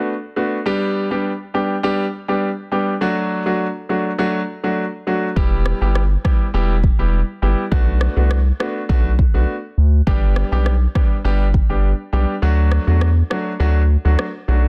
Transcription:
0.00 0.12 A3 medium
0.00 0.13 B3 medium
0.00 0.13 D4 medium
0.00 0.13 F#4 medium
0.36 0.57 A3 medium
0.36 0.57 B3 medium
0.36 0.57 D4 medium
0.36 0.57 F#4 medium
0.66 1.07 G3 medium
0.66 1.07 B3 medium
0.66 1.07 D4 medium
0.66 1.07 G4 loud
1.11 1.30 G3 medium
1.11 1.30 B3 medium
1.11 1.30 D4 medium
1.11 1.30 G4 medium
1.54 1.75 G3 medium
1.54 1.75 B3 medium
1.54 1.75 D4 medium
1.54 1.75 G4 medium
1.83 2.04 G3 loud
1.83 2.04 B3 medium
1.83 2.04 D4 medium
1.83 2.04 G4 loud
2.28 2.48 G3 medium
2.28 2.48 B3 medium
2.28 2.48 D4 medium
2.28 2.48 G4 medium
2.72 2.92 G3 medium
2.72 2.92 B3 medium
2.72 2.92 D4 medium
2.72 2.92 G4 medium
3.01 3.42 F#3 medium
3.01 3.42 A3 medium
3.01 3.43 D4 medium
3.01 3.43 F#4 loud
3.46 3.65 F#3 medium
3.46 3.65 A3 medium
3.46 3.66 D4 medium
3.46 3.66 F#4 medium
3.89 4.10 F#3 medium
3.89 4.10 A3 medium
3.89 4.10 D4 medium
3.89 4.10 F#4 medium
4.18 4.39 F#3 medium
4.18 4.39 A3 medium
4.18 4.39 D4 medium
4.18 4.39 F#4 loud
4.63 4.83 F#3 medium
4.63 4.83 A3 medium
4.63 4.83 D4 medium
4.63 4.83 F#4 medium
5.07 5.27 F#3 medium
5.07 5.27 A3 medium
5.07 5.28 D4 medium
5.07 5.28 F#4 medium
5.36 5.73 E1 loud
5.36 5.78 G3 medium
5.36 5.78 B3 medium
5.36 5.78 E4 medium
5.36 5.78 G4 loud
5.36 kick loud
5.66 cross-stick medium
5.81 6.17 G1 loud
5.81 6.01 G3 medium
5.81 6.01 B3 medium
5.81 6.01 E4 medium
5.81 6.01 G4 medium
5.95 cross-stick medium
6.24 6.45 G3 medium
6.24 6.45 B3 medium
6.24 6.45 E4 medium
6.24 6.45 G4 medium
6.24 kick medium
6.24 cross-stick medium
6.54 6.91 E1 loud
6.54 6.74 G3 medium
6.54 6.74 B3 medium
6.54 6.75 E4 medium
6.54 6.75 G4 loud
6.84 kick medium
6.99 7.23 E1 loud
6.99 7.18 G3 medium
6.99 7.18 B3 medium
6.99 7.18 E4 medium
6.99 7.19 G4 medium
7.42 7.55 G1 medium
7.42 7.63 G3 medium
7.42 7.63 B3 medium
7.42 7.63 E4 medium
7.42 7.63 G4 medium
7.71 8.08 B1 loud
7.71 8.13 A3 medium
7.71 8.13 B3 medium
7.71 8.13 D4 medium
7.71 8.13 F#4 loud
7.71 kick loud
8.01 cross-stick medium
8.16 8.52 C2 medium
8.16 8.36 A3 medium
8.16 8.36 B3 medium
8.16 8.36 D4 medium
8.16 8.36 F#4 medium
8.31 cross-stick loud
8.60 8.80 A3 medium
8.60 8.80 B3 medium
8.60 8.81 D4 medium
8.60 8.81 F#4 medium
8.60 cross-stick medium
8.89 9.26 B1 loud
8.89 9.10 A3 medium
8.89 9.10 B3 medium
8.89 9.10 D4 medium
8.89 9.10 F#4 loud
8.89 kick medium
9.19 kick medium
9.34 9.46 B1 medium
9.34 9.54 A3 medium
9.34 9.54 B3 medium
9.34 9.54 D4 medium
9.34 9.54 F#4 medium
9.78 10.02 D2 medium
10.07 10.44 G1 loud
10.07 10.48 G3 medium
10.07 10.48 B3 medium
10.07 10.48 D4 medium
10.07 10.48 G4 loud
10.07 kick loud
10.36 cross-stick medium
10.52 10.87 B1 medium
10.52 10.71 G3 medium
10.52 10.71 B3 medium
10.52 10.71 D4 medium
10.52 10.72 G4 medium
10.66 cross-stick medium
10.95 11.16 G3 medium
10.95 11.16 B3 medium
10.95 11.16 D4 medium
10.95 11.16 G4 medium
10.95 kick medium
10.95 cross-stick medium
11.24 11.61 G1 loud
11.24 11.45 G3 medium
11.24 11.45 B3 medium
11.24 11.45 D4 medium
11.24 11.45 G4 loud
11.54 kick medium
11.69 11.94 G1 medium
11.69 11.89 G3 medium
11.69 11.89 B3 medium
11.69 11.89 D4 medium
11.69 11.89 G4 medium
12.13 12.26 B1 medium
12.13 12.33 G3 medium
12.13 12.33 B3 medium
12.13 12.33 D4 medium
12.13 12.34 G4 medium
12.42 12.79 D2 loud
12.42 12.84 F#3 medium
12.42 12.84 A3 medium
12.42 12.84 D4 medium
12.42 12.84 F#4 loud
12.72 cross-stick medium
12.87 13.23 E2 loud
12.87 13.06 F#3 medium
12.87 13.07 A3 medium
12.87 13.07 D4 medium
12.87 13.07 F#4 medium
13.01 cross-stick medium
13.30 13.51 F#3 medium
13.30 13.51 A3 medium
13.30 13.51 D4 medium
13.30 13.51 F#4 medium
13.30 cross-stick medium
13.60 13.97 D2 loud
13.60 13.80 F#3 medium
13.60 13.80 A3 medium
13.60 13.80 D4 medium
13.60 13.81 F#4 loud
14.05 14.16 D2 loud
14.05 14.24 F#3 medium
14.05 14.24 A3 medium
14.05 14.24 D4 medium
14.05 14.24 F#4 medium
14.19 cross-stick medium
14.48 14.68 B1 loud
14.48 14.68 F#3 medium
14.48 14.68 A3 medium
14.48 14.68 D4 medium
14.48 14.68 F#4 medium

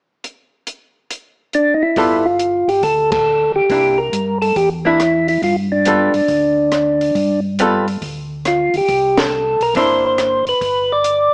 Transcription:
0.24 closed hi-hat soft
0.67 closed hi-hat medium
1.11 closed hi-hat medium
1.53 1.74 D4 medium
1.53 closed hi-hat soft
1.74 1.83 D#4 medium
1.82 2.27 E4 medium
1.96 2.64 G1 medium
1.96 2.23 G3 medium
1.96 2.23 B3 medium
1.96 2.23 F4 medium
1.96 2.23 A4 medium
1.96 kick soft
1.96 open hi-hat soft
2.25 2.70 F4 medium
2.39 closed hi-hat soft
2.68 2.81 G#1 medium
2.68 2.83 G4 medium
2.68 open hi-hat soft
2.82 3.51 D2 medium
2.82 3.11 A4 medium
2.82 kick soft
2.82 open hi-hat soft
3.12 3.52 A4 loud
3.12 kick medium
3.12 ride medium
3.54 3.61 D2 soft
3.54 4.00 G4 loud
3.70 4.10 C2 medium
3.70 3.96 A#3 soft
3.70 3.96 D4 soft
3.70 3.96 E4 soft
3.70 kick soft
3.70 open hi-hat soft
3.98 4.38 A#4 medium
4.12 4.52 G2 medium
4.12 closed hi-hat medium
4.42 4.56 A4 medium
4.42 open hi-hat soft
4.56 5.38 E2 medium
4.56 4.69 G4 medium
4.56 kick soft
4.56 open hi-hat soft
4.85 4.98 A#3 medium
4.85 4.98 D4 medium
4.85 5.27 E4 loud
4.85 4.99 E4 medium
5.00 cross-stick soft
5.00 closed hi-hat soft
5.28 5.42 E4 medium
5.28 open hi-hat soft
5.42 6.10 G2 medium
5.42 5.56 F4 medium
5.42 kick soft
5.42 open hi-hat soft
5.72 7.40 D4 medium
5.85 6.12 G3 medium
5.85 6.12 B3 medium
5.85 6.12 F4 medium
5.85 6.12 A4 medium
5.85 closed hi-hat medium
6.14 6.21 G2 soft
6.14 open hi-hat soft
6.28 7.11 D2 medium
6.28 kick soft
6.28 open hi-hat soft
6.72 cross-stick soft
6.72 closed hi-hat soft
7.01 open hi-hat soft
7.15 7.97 G2 medium
7.15 kick soft
7.15 open hi-hat soft
7.59 7.85 G3 medium
7.59 7.85 B3 medium
7.59 7.85 F4 medium
7.59 7.86 A4 medium
7.59 closed hi-hat medium
7.88 open hi-hat soft
8.01 8.70 D2 medium
8.01 kick soft
8.01 open hi-hat soft
8.45 8.76 F4 medium
8.45 cross-stick soft
8.45 closed hi-hat soft
8.74 8.81 D2 soft
8.74 9.20 G4 medium
8.74 open hi-hat soft
8.88 9.56 C2 medium
8.88 kick soft
8.88 open hi-hat soft
9.17 9.63 A4 medium
9.17 snare medium
9.17 ride medium
9.60 9.74 B1 medium
9.60 9.75 A#4 medium
9.60 open hi-hat soft
9.75 10.43 G1 medium
9.75 10.42 A#3 medium
9.75 10.42 D4 medium
9.75 10.42 E4 medium
9.75 10.05 C5 medium
9.75 kick soft
9.75 open hi-hat soft
10.06 10.45 C5 medium
10.18 cross-stick medium
10.18 closed hi-hat soft
10.46 10.54 G1 soft
10.46 10.92 B4 medium
10.46 open hi-hat soft
10.61 11.29 G1 medium
10.61 kick soft
10.61 open hi-hat soft
10.92 11.34 D5 loud
11.04 closed hi-hat medium

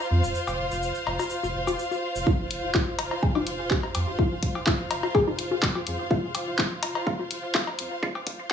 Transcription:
0.00 8.53 F4 medium
0.00 8.53 C5 medium
0.00 8.53 F5 medium
0.11 0.21 F2 loud
0.23 0.33 D#1 medium
0.23 shaker medium
0.35 shaker medium
0.47 0.57 F1 medium
0.47 cowbell medium
0.47 shaker soft
0.59 0.69 F1 medium
0.71 0.91 F1 medium
0.71 shaker medium
0.82 shaker medium
0.95 shaker soft
1.07 1.17 F1 loud
1.07 cowbell medium
1.19 cowbell medium
1.19 low bongo soft
1.19 shaker medium
1.30 shaker medium
1.43 1.53 F1 loud
1.43 low bongo soft
1.43 shaker soft
1.55 1.69 F1 medium
1.67 1.77 D#1 loud
1.67 cowbell medium
1.67 low bongo medium
1.67 shaker medium
1.79 shaker medium
1.91 low bongo soft
1.91 shaker soft
2.15 2.25 F1 medium
2.15 shaker medium
2.27 2.35 F4 medium
2.27 kick loud
2.39 2.49 F1 loud
2.51 2.61 F1 medium
2.51 closed hi-hat medium
2.63 2.83 F1 medium
2.75 2.80 F4 medium
2.75 kick loud
2.75 clap medium
2.75 cowbell medium
2.99 3.09 F1 medium
2.99 closed hi-hat medium
2.99 cowbell medium
3.11 cowbell medium
3.23 3.31 G#4 medium
3.23 kick loud
3.35 3.45 F1 loud
3.35 3.43 D#4 medium
3.35 cowbell medium
3.35 low bongo soft
3.47 3.61 F1 medium
3.47 closed hi-hat medium
3.59 3.69 D#1 loud
3.71 3.79 G4 medium
3.71 kick loud
3.71 clap medium
3.83 cowbell medium
3.95 4.05 F2 loud
3.95 closed hi-hat medium
3.95 cowbell medium
4.07 4.17 D#1 medium
4.19 4.27 F4 medium
4.19 kick loud
4.31 4.41 F1 loud
4.43 4.53 F1 medium
4.43 kick medium
4.43 closed hi-hat medium
4.55 4.75 F1 medium
4.55 cowbell medium
4.67 4.72 F4 medium
4.67 kick loud
4.67 clap medium
4.91 5.01 F1 loud
4.91 closed hi-hat loud
4.91 cowbell medium
5.03 cowbell medium
5.03 low bongo medium
5.15 5.23 G#4 medium
5.15 kick loud
5.15 cowbell medium
5.27 5.37 F1 loud
5.27 5.35 D#4 medium
5.27 low bongo soft
5.39 5.53 F1 medium
5.39 closed hi-hat medium
5.51 5.61 D#1 loud
5.51 low bongo medium
5.63 5.71 G4 medium
5.63 kick loud
5.63 clap loud
5.75 cowbell medium
5.75 low bongo soft
5.87 5.97 F2 loud
5.87 closed hi-hat medium
5.99 6.09 D#1 medium
6.11 6.19 F4 medium
6.11 kick loud
6.23 6.33 F1 loud
6.35 6.45 F1 medium
6.35 closed hi-hat medium
6.35 cowbell medium
6.47 6.67 F1 medium
6.59 6.64 F4 medium
6.59 kick loud
6.59 clap medium
6.83 6.93 F1 loud
6.83 closed hi-hat loud
6.83 cowbell medium
6.95 cowbell medium
7.07 7.15 F4 medium
7.07 kick loud
7.19 7.29 F1 loud
7.19 low bongo soft
7.31 7.45 F1 medium
7.31 closed hi-hat loud
7.43 7.53 D#1 loud
7.55 7.60 F4 medium
7.55 kick loud
7.55 clap loud
7.55 cowbell medium
7.67 cowbell medium
7.79 7.89 F2 loud
7.79 closed hi-hat loud
7.91 8.01 D#1 medium
8.03 8.11 F4 medium
8.03 kick loud
8.15 8.25 F1 loud
8.15 cowbell medium
8.27 8.37 F1 medium
8.27 kick medium
8.27 closed hi-hat medium
8.39 8.53 F1 medium

